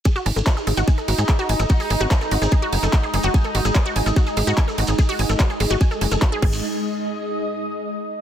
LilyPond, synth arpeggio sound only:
\new Staff \with { instrumentName = "Synth arpeggio sound" } { \time 4/4 \tempo 4 = 146 gis'16 fis'16 gis''16 a'16 fis'16 gis'16 gis'16 fis'16 gis''16 a'16 fis'16 gis'16 gis'16 fis'16 gis''16 a'16 | fis'16 gis'16 gis'16 fis'16 gis''16 a'16 fis'16 gis'16 gis'16 fis'16 gis''16 a'16 fis'16 gis'16 gis'16 fis'16 | gis''16 a'16 fis'16 gis'16 gis'16 fis'16 gis''16 a'16 fis'16 gis'16 gis'16 fis'16 gis''16 a'16 fis'16 gis'16 | gis'16 fis'16 gis''16 a'16 fis'16 gis'16 gis'16 fis'16 gis''16 a'16 gis'16 a'16 fis'16 gis'16 gis'8 |
r1 | }